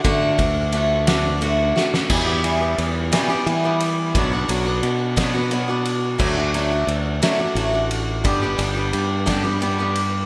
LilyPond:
<<
  \new Staff \with { instrumentName = "Steel-string acoustic guitar" } { \time 6/8 \key e \minor \tempo 4. = 58 <d a d' fis'>8 <a d' fis'>8 <d a d' fis'>8 <d a d' fis'>8 <d a d' fis'>8 <a d' fis'>8 | <e, b, e g b g'>16 <e g b g'>16 <e g b g'>16 <e g b g'>8. <e, b, e g b g'>16 <e g b g'>16 <e g b g'>16 <e g b g'>8. | <b, fis b d' fis'>16 <b d' fis'>16 <fis b d' fis'>16 <b d' fis'>8. <b, fis b d' fis'>16 <b d' fis'>16 <fis b d' fis'>16 <b d' fis'>8. | <d fis a d' fis'>16 <a d' fis'>16 <fis a d' fis'>16 <a d' fis'>8. <d fis a d' fis'>16 <a d' fis'>16 <fis a d' fis'>16 <a d' fis'>8. |
<g, d g b d' g'>16 <g b d' g'>16 <g b d' g'>16 <g b d' g'>8. <g, d g b d' g'>16 <g b d' g'>16 <g b d' g'>16 <g b d' g'>8. | }
  \new Staff \with { instrumentName = "Fingered electric bass" } { \clef bass \time 6/8 \key e \minor d8 d,2 r8 | e,4 e,8 r8 e4 | b,,8 b,,8 b,2 | d,4 d,8 r8 a,,4 |
g,,8 g,,8 g,2 | }
  \new DrumStaff \with { instrumentName = "Drums" } \drummode { \time 6/8 <bd cymr>8 <bd cymr>8 cymr8 <cymr sn>8 cymr8 sn16 sn16 | <cymc bd>8 cymr8 cymr8 <cymr sn>8 cymr8 cymr8 | <bd cymr>8 cymr8 cymr8 <bd cymr sn>8 cymr8 cymr8 | <cymc bd>8 cymr8 cymr8 <cymr sn>8 cymr8 cymr8 |
<bd cymr>8 cymr8 cymr8 <bd cymr sn>8 cymr8 cymr8 | }
>>